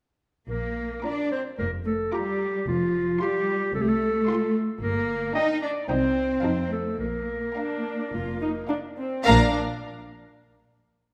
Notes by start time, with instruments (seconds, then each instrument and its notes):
0.48 double bass section A#1, cello section A#3, clarinet A#4
1.04 cello section D4, viola section F4, clarinet D5, violin section A#5 D6
1.32 cello section C4, clarinet C5
1.58 double bass section F1, cello section A#3, clarinet A#4
1.86 cello section A3, clarinet A4
2.12 cello section G3, viola section F4, clarinet G4, violin section A#5 D6
2.67 double bass section F1, cello section F3, clarinet F4
3.20 cello section G3, viola section F4, clarinet G4, violin section C6
3.74 double bass section C2, cello section A3, clarinet A4
3.82 clarinet G4
3.88 clarinet A4
4.28 viola section F4, violin section C6
4.82 double bass section G1, cello section A#3, clarinet A#4
5.35 viola section D4, cello section D#4, clarinet D#5, violin section G5 A#5
5.62 cello section D4, clarinet D5
5.88 double bass section C2, cello section C4, viola section D#4, clarinet C5, violin section G5 A#5
6.43 double bass section F2, viola section D#4, violin section F5 A5
6.72 cello section A3, clarinet A4
6.99 double bass section A#1, cello section A#3, clarinet A#4
7.56 viola section D4, violin section F5 A#5
8.13 double bass section F1, viola section F4
8.41 viola section D#4
8.69 viola section D4, violin section F5 A#5
8.97 viola section C4
9.25 double bass section A#1, cello section A#3, viola section D4, clarinet A#4, violin section F5 A#5